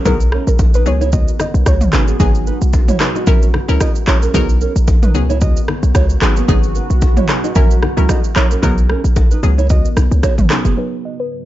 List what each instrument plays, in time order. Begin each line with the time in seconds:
Already playing: ambient pad A#4
0.05 808-style bass B1, synth pluck F#3 B3 D#4 A#4, ambient pad B3, nylon-string guitar B3 G#4, kick, low conga, shaker
0.20 shaker
0.32 nylon-string guitar C#4 A#4, cross-stick
0.47 808-style bass A#1, synth pluck A#4, shaker
0.59 kick, high bongo, shaker
0.74 nylon-string guitar D#4 B4, synth pluck B4, shaker
0.86 808-style bass C#2, ambient pad C#3 F#4, synth pluck F#3 B3 C#4 G#4 C#5, low bongo, shaker
1.01 nylon-string guitar E4 C#5, low bongo, shaker
1.12 nylon-string guitar F#4 D#5, kick, low conga, shaker
1.28 shaker
1.40 synth pluck D#5, cross-stick, high bongo, low bongo, low conga, shaker
1.54 808-style bass B1, shaker
1.66 808-style bass C#2, nylon-string guitar F#4 C#5, synth pluck C#5, kick, cross-stick, high bongo, shaker
1.81 mid tom, shaker
1.93 808-style bass G#1, synth pluck F#3 B3 C#4 G#4, nylon-string guitar D#4 B4, cross-stick, clap, low bongo, shaker
2.08 nylon-string guitar B3 G#4, shaker
2.20 808-style bass G#1, synth pluck F#3 B3 D#4 G#4, ambient pad G#3 F#4 B4, nylon-string guitar B3 G#4, kick, low conga, shaker
2.35 shaker
2.47 nylon-string guitar D#4 B4, shaker
2.62 808-style bass B1, shaker
2.73 kick, high bongo, shaker
2.88 nylon-string guitar E4 C#5, mid tom, shaker
3.00 synth pluck F#3 B3 D#4 G#4, cross-stick, clap, low bongo, shaker
3.15 nylon-string guitar F#4 D#5, low bongo, shaker
3.27 808-style bass A#1, synth pluck F#3 C#4 E4 A#4, ambient pad E4 G#4 A#4, nylon-string guitar A#4 E5, kick, low conga, shaker
3.42 shaker
3.54 cross-stick, high bongo, low bongo, low conga
3.68 808-style bass C#2, synth pluck F#3 C#4 E4 A#4, shaker
3.80 nylon-string guitar F#4 D#5, kick, cross-stick, high bongo, shaker
3.95 shaker
4.07 808-style bass A#1, synth pluck F#3 C#4 E4 A#4, nylon-string guitar E4 C#5, cross-stick, clap, low bongo, shaker
4.22 nylon-string guitar C#4 A#4, shaker
4.34 808-style bass B1, synth pluck F#3 B3 D#4 A#4, nylon-string guitar B3 G#4, kick, low conga, shaker
4.49 shaker
4.61 nylon-string guitar C#4 A#4, shaker
4.76 808-style bass A#1, shaker
4.87 kick, high bongo, shaker
5.03 nylon-string guitar D#4 B4, mid tom, shaker
5.14 808-style bass C#2, ambient pad C#3 B3 F#4, synth pluck F#3 B3 C#4 G#4, low bongo, shaker
5.30 nylon-string guitar E4 C#5, low bongo, shaker
5.41 nylon-string guitar F#4 D#5, kick, low conga, shaker
5.57 shaker
5.68 cross-stick, high bongo, low bongo, low conga
5.83 808-style bass B1, shaker
5.95 808-style bass C#2, nylon-string guitar F#4 C#5, kick, cross-stick, high bongo, shaker
6.10 shaker
6.22 808-style bass G#1, synth pluck F#3 B3 C#4 G#4, nylon-string guitar D#4 B4, cross-stick, clap, low bongo, shaker
6.36 nylon-string guitar B3 G#4, shaker
6.48 808-style bass G#1, synth pluck F#3 B3 D#4 G#4, ambient pad G#3 B4, nylon-string guitar B3 G#4, kick, low conga, shaker
6.63 shaker
6.75 nylon-string guitar D#4 B4, shaker
6.90 808-style bass B1, shaker
7.02 kick, high bongo, shaker
7.17 nylon-string guitar E4 C#5, mid tom, shaker
7.29 synth pluck F#3 B3 D#4 G#4, cross-stick, clap, low bongo, shaker
7.44 nylon-string guitar F#4 D#5, low bongo, shaker
7.55 808-style bass A#1, synth pluck F#3 C#4 E4 A#4, ambient pad E4 G#4 A#4, nylon-string guitar A#4 E5, kick, low conga, shaker
7.71 shaker
7.83 cross-stick, high bongo, low bongo, low conga
7.97 808-style bass C#2, synth pluck F#3 C#4 E4 A#4, shaker
8.09 nylon-string guitar F#4 D#5, kick, cross-stick, high bongo, shaker
8.24 shaker
8.36 808-style bass A#1, synth pluck F#3 C#4 E4 A#4, nylon-string guitar E4 C#5, cross-stick, clap, low bongo, shaker
8.51 nylon-string guitar C#4 A#4, shaker
8.63 808-style bass B1, synth pluck F#3 B3 D#4 A#4, ambient pad B3, nylon-string guitar B3 G#4, kick, low conga, shaker
8.78 shaker
8.90 nylon-string guitar C#4 A#4, cross-stick
9.04 808-style bass A#1, shaker
9.16 kick, high bongo, shaker
9.31 nylon-string guitar D#4 B4, shaker
9.43 808-style bass C#2, ambient pad C#3 F#4, synth pluck F#3 B3 C#4 G#4, low bongo, shaker
9.58 nylon-string guitar E4 C#5, low bongo, shaker
9.69 nylon-string guitar F#4 D#5, kick, low conga, shaker
9.85 shaker
9.97 808-style bass B1, cross-stick, high bongo, low bongo, low conga, shaker
10.11 808-style bass C#2, shaker
10.23 nylon-string guitar F#4 C#5, kick, cross-stick, high bongo, shaker
10.38 808-style bass G#1, mid tom, shaker
10.50 synth pluck F#3 B3 C#4 G#4, nylon-string guitar D#4 B4, cross-stick, clap, low bongo, shaker
10.65 808-style bass F#1, nylon-string guitar B3 G#4, shaker
10.77 ambient pad G#2 F#3 B4, synth pluck F#3 B3 D#4 G#4 B4
11.05 synth pluck D#5
11.20 synth pluck B4